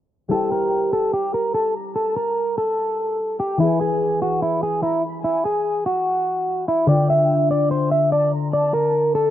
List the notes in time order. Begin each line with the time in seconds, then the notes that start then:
0.29 G3 E4 G4 A4 G5
0.34 C5
0.52 A#4
0.93 A4
1.14 G4
1.34 A#4
1.54 A4 A5
1.75 A#5
1.96 A4 A5
2.17 A#4
2.58 A4
3.40 G4 G5
3.57 E3 E4 G#4 G#5
3.63 B4
3.81 G#4
4.22 F#4
4.42 E4
4.63 G#4
4.83 E4 A#5
5.04 B5
5.24 E4 G#5
5.45 G#4
5.86 F#4
6.68 E4
6.86 D3 D4 F4 D5 G5
7.10 E5
7.51 D5
7.71 C5
7.91 E5
8.12 D5 A5
8.33 A#5
8.53 D5 A5
8.74 A#4
9.15 A4